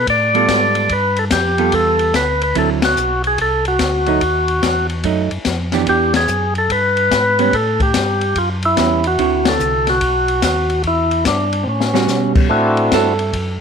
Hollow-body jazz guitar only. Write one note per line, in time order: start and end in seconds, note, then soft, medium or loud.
0.34 0.87 G3 medium
0.34 0.88 B3 medium
0.34 0.88 F4 medium
0.34 0.88 A4 medium
1.58 2.11 G3 medium
1.58 2.12 B3 medium
1.58 2.12 F4 medium
1.58 2.12 A4 medium
2.55 2.80 D3 medium
2.55 2.80 F#3 medium
2.55 2.80 C4 medium
2.55 2.80 E4 medium
4.07 4.20 F#3 medium
4.07 4.20 A3 medium
4.07 4.20 D#4 medium
5.04 5.29 F#3 medium
5.04 5.29 A3 medium
5.04 5.29 D#4 medium
5.73 5.86 E3 medium
5.73 5.86 B3 medium
5.73 5.86 D4 medium
5.73 5.86 G4 medium
5.87 6.12 E3 medium
5.87 6.12 B3 medium
5.87 6.12 D4 medium
5.87 6.12 G4 medium
7.39 7.52 G3 medium
7.39 7.52 B3 medium
7.39 7.52 C#4 medium
8.77 9.02 G3 medium
8.77 9.02 B3 medium
8.77 9.02 C#4 medium
9.18 10.01 D3 medium
9.18 10.02 C4 soft
9.18 10.02 E4 medium
9.18 10.02 F#4 medium
11.94 12.47 G3 medium
11.94 12.47 C#4 medium
11.94 12.48 F#4 medium
12.94 13.58 A4 medium